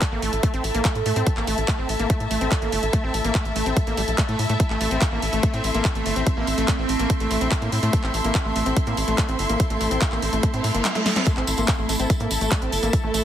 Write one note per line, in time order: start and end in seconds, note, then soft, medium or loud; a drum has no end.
0.00 11.25 A3 medium
0.00 13.24 E4 medium
0.00 4.62 A4 medium
0.00 13.24 A4 medium
0.00 13.24 E5 medium
0.00 5.40 A5 medium
0.00 kick loud
0.00 clap loud
0.00 closed hi-hat medium
0.12 0.19 A1 medium
0.12 0.22 A#3 medium
0.22 0.29 A1 loud
0.22 0.32 A3 medium
0.22 open hi-hat medium
0.33 0.40 A1 medium
0.33 closed hi-hat medium
0.43 0.53 A3 medium
0.43 kick loud
0.43 closed hi-hat medium
0.54 0.61 A1 medium
0.54 0.64 C4 medium
0.54 closed hi-hat soft
0.64 0.71 A1 medium
0.64 open hi-hat loud
0.74 0.81 A#1 medium
0.74 0.84 A#3 medium
0.74 closed hi-hat medium
0.85 0.95 A3 medium
0.85 kick loud
0.85 clap loud
0.85 closed hi-hat medium
0.95 1.02 A2 medium
0.95 closed hi-hat soft
1.06 1.13 A2 medium
1.06 1.16 A3 medium
1.06 open hi-hat medium
1.16 1.23 A2 loud
1.16 1.26 C4 medium
1.16 closed hi-hat medium
1.27 kick loud
1.27 closed hi-hat medium
1.37 1.44 A1 medium
1.37 1.47 A#3 medium
1.37 clap soft
1.47 1.54 A1 loud
1.47 1.57 A3 medium
1.47 open hi-hat loud
1.58 1.65 A1 medium
1.58 closed hi-hat medium
1.68 1.78 A3 medium
1.68 kick loud
1.68 clap loud
1.68 closed hi-hat medium
1.79 1.86 A1 medium
1.79 1.89 C4 medium
1.89 1.96 A1 loud
1.89 open hi-hat medium
1.99 2.06 A1 medium
1.99 2.09 A#3 medium
1.99 closed hi-hat medium
2.10 2.20 A3 medium
2.10 kick loud
2.10 closed hi-hat medium
2.20 2.27 A2 medium
2.20 closed hi-hat soft
2.31 2.38 A1 medium
2.31 2.41 A3 medium
2.31 open hi-hat loud
2.41 2.48 A1 loud
2.41 2.51 C4 medium
2.41 closed hi-hat medium
2.52 kick loud
2.52 clap loud
2.52 closed hi-hat medium
2.62 2.69 A1 medium
2.62 2.72 A#3 medium
2.62 closed hi-hat soft
2.72 2.79 G1 loud
2.72 2.82 A3 medium
2.72 open hi-hat loud
2.83 2.90 A1 medium
2.83 closed hi-hat medium
2.93 3.03 A3 medium
2.93 kick loud
2.93 closed hi-hat medium
3.04 3.11 A1 medium
3.04 3.14 C4 medium
3.14 3.21 A1 loud
3.14 open hi-hat loud
3.24 3.31 A1 medium
3.24 3.34 A#3 medium
3.24 closed hi-hat medium
3.35 3.45 A3 medium
3.35 kick loud
3.35 clap loud
3.35 closed hi-hat medium
3.45 3.52 A1 medium
3.45 closed hi-hat soft
3.56 3.63 A1 loud
3.56 3.66 A3 medium
3.56 open hi-hat loud
3.66 3.73 A1 loud
3.66 3.76 C4 medium
3.66 closed hi-hat medium
3.77 kick loud
3.77 closed hi-hat medium
3.87 3.94 A1 medium
3.87 3.97 A#3 medium
3.87 closed hi-hat soft
3.97 4.04 A1 loud
3.97 4.02 G3 medium
3.97 open hi-hat loud
4.08 4.15 A#1 medium
4.08 closed hi-hat medium
4.18 4.23 A3 medium
4.18 kick loud
4.18 clap loud
4.18 closed hi-hat medium
4.29 4.36 A2 medium
4.29 4.39 A3 loud
4.29 closed hi-hat soft
4.39 4.46 A2 medium
4.39 open hi-hat medium
4.49 4.56 A2 medium
4.49 4.54 A3 medium
4.49 closed hi-hat medium
4.60 11.29 C4 medium
4.60 kick loud
4.60 closed hi-hat medium
4.70 4.77 A1 medium
4.70 4.80 A3 medium
4.70 clap soft
4.81 4.88 A1 loud
4.81 4.91 A3 medium
4.81 open hi-hat loud
4.91 4.98 A1 medium
4.91 5.01 C4 medium
4.91 closed hi-hat soft
5.02 kick loud
5.02 clap loud
5.02 closed hi-hat medium
5.12 5.19 A1 medium
5.12 5.22 A#3 medium
5.22 5.29 A1 medium
5.22 open hi-hat medium
5.33 5.40 A1 medium
5.33 5.43 A3 medium
5.33 closed hi-hat medium
5.38 12.07 C6 medium
5.43 5.53 A3 medium
5.43 kick loud
5.43 closed hi-hat medium
5.54 5.61 A2 medium
5.54 5.64 C4 medium
5.54 closed hi-hat soft
5.64 5.71 A1 loud
5.64 open hi-hat loud
5.74 5.81 A1 medium
5.74 5.84 A#3 medium
5.74 closed hi-hat medium
5.85 kick loud
5.85 clap loud
5.85 closed hi-hat medium
5.95 6.02 A1 medium
5.95 6.05 A3 medium
5.95 closed hi-hat soft
6.06 6.13 G1 medium
6.06 6.16 A3 medium
6.06 open hi-hat medium
6.16 6.23 A1 medium
6.16 6.26 C4 medium
6.16 closed hi-hat medium
6.27 kick loud
6.27 closed hi-hat medium
6.37 6.44 A1 medium
6.37 6.47 A#3 medium
6.47 6.54 A1 loud
6.47 open hi-hat loud
6.58 6.65 A1 medium
6.58 6.68 A3 medium
6.58 closed hi-hat medium
6.68 kick loud
6.68 clap loud
6.68 closed hi-hat medium
6.79 6.86 A1 medium
6.79 6.89 C4 medium
6.89 6.96 A1 loud
6.89 open hi-hat medium
6.99 7.06 A1 medium
6.99 7.09 A#3 medium
6.99 closed hi-hat medium
7.10 kick loud
7.10 closed hi-hat medium
7.20 7.27 A1 medium
7.20 7.30 A3 medium
7.20 closed hi-hat soft
7.31 7.38 A1 loud
7.31 7.41 A3 medium
7.31 open hi-hat loud
7.41 7.48 A#1 medium
7.41 7.51 C4 medium
7.41 closed hi-hat medium
7.52 kick loud
7.52 clap loud
7.52 closed hi-hat medium
7.62 7.69 A2 medium
7.62 7.72 A#3 medium
7.62 closed hi-hat soft
7.72 7.79 A2 loud
7.72 open hi-hat medium
7.83 7.90 A2 medium
7.83 7.93 A3 medium
7.83 closed hi-hat medium
7.93 8.03 A3 medium
7.93 kick loud
7.93 closed hi-hat medium
8.04 8.11 A1 medium
8.04 8.14 C4 medium
8.04 clap soft
8.14 8.21 A1 loud
8.14 open hi-hat loud
8.24 8.31 A1 medium
8.24 8.34 A#3 medium
8.24 closed hi-hat medium
8.35 kick loud
8.35 clap loud
8.35 closed hi-hat medium
8.45 8.52 A1 medium
8.45 8.55 A3 medium
8.56 8.63 A1 loud
8.56 8.66 A3 medium
8.56 open hi-hat medium
8.66 8.73 A1 medium
8.66 8.76 C4 medium
8.66 closed hi-hat medium
8.77 kick loud
8.77 closed hi-hat medium
8.87 8.94 A2 medium
8.87 8.97 A#3 medium
8.87 closed hi-hat soft
8.97 9.04 A1 loud
8.97 open hi-hat loud
9.08 9.15 A1 medium
9.08 9.18 A3 medium
9.08 closed hi-hat medium
9.18 kick loud
9.18 clap loud
9.18 closed hi-hat medium
9.29 9.36 A1 medium
9.29 9.39 C4 medium
9.29 closed hi-hat soft
9.39 9.46 G1 medium
9.39 open hi-hat medium
9.49 9.56 A1 medium
9.49 9.59 A#3 medium
9.49 closed hi-hat medium
9.60 kick loud
9.60 closed hi-hat medium
9.70 9.77 A1 medium
9.70 9.80 A3 medium
9.70 closed hi-hat soft
9.81 9.88 A1 loud
9.81 9.91 A3 medium
9.81 open hi-hat loud
9.91 9.98 A1 medium
9.91 10.01 C4 medium
9.91 closed hi-hat medium
10.02 kick loud
10.02 clap loud
10.02 closed hi-hat medium
10.12 10.19 A1 medium
10.12 10.22 A#3 medium
10.12 clap soft
10.22 10.29 A1 loud
10.22 open hi-hat medium
10.33 10.40 A1 loud
10.33 10.43 A3 medium
10.33 closed hi-hat medium
10.43 10.53 A3 medium
10.43 kick loud
10.43 closed hi-hat medium
10.43 reverse cymbal medium
10.54 10.61 A2 medium
10.54 10.64 C4 medium
10.54 closed hi-hat soft
10.64 10.71 A2 loud
10.64 open hi-hat loud
10.74 10.81 G1 medium
10.74 10.84 A#3 medium
10.74 closed hi-hat medium
10.85 snare medium
10.85 clap loud
10.85 closed hi-hat medium
10.95 11.05 A3 medium
10.95 snare medium
10.95 closed hi-hat soft
11.06 11.16 A3 medium
11.06 snare medium
11.06 open hi-hat medium
11.16 11.26 C4 medium
11.16 snare medium
11.16 closed hi-hat medium
11.26 11.36 A3 medium
11.26 13.24 A3 medium
11.26 13.24 A4 medium
11.26 kick loud
11.26 closed hi-hat medium
11.26 tambourine soft
11.37 11.44 A1 medium
11.37 11.47 C4 medium
11.37 clap soft
11.47 11.54 A1 loud
11.47 open hi-hat loud
11.47 tambourine loud
11.57 11.65 A1 medium
11.57 11.68 A#3 medium
11.57 closed hi-hat medium
11.57 tambourine medium
11.68 kick loud
11.68 clap loud
11.68 closed hi-hat medium
11.79 11.86 A1 medium
11.79 11.89 A3 medium
11.89 11.96 A1 loud
11.89 11.99 A3 medium
11.89 open hi-hat medium
11.89 tambourine medium
11.99 12.06 A1 loud
11.99 12.09 C4 medium
11.99 closed hi-hat medium
11.99 tambourine soft
12.04 13.24 A5 medium
12.10 kick loud
12.10 closed hi-hat medium
12.10 tambourine soft
12.20 12.27 A2 medium
12.20 12.30 A#3 medium
12.20 closed hi-hat soft
12.31 12.38 A1 loud
12.31 open hi-hat loud
12.31 tambourine medium
12.41 12.48 A1 medium
12.41 12.51 A3 medium
12.41 closed hi-hat medium
12.41 tambourine medium
12.52 12.61 A3 medium
12.52 kick loud
12.52 clap loud
12.52 closed hi-hat medium
12.62 12.69 A1 medium
12.62 12.72 C4 medium
12.62 closed hi-hat soft
12.72 12.79 G1 medium
12.72 open hi-hat medium
12.72 tambourine medium
12.83 12.90 A1 loud
12.83 12.93 A#3 medium
12.83 closed hi-hat medium
12.83 tambourine medium
12.93 kick loud
12.93 closed hi-hat medium
12.93 tambourine soft
13.04 13.11 A1 medium
13.04 13.14 A3 medium
13.14 13.21 A1 loud
13.14 13.24 A3 medium
13.14 open hi-hat loud
13.14 tambourine medium